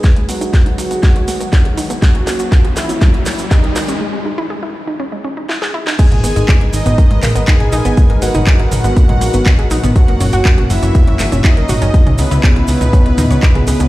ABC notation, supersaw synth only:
X:1
M:4/4
L:1/8
Q:1/4=121
K:G#m
V:1 name="Supersaw synth"
z8 | z8 | z8 | g3 d3 g2- |
g f6- f | f3 e3 d2- | d B6- B |]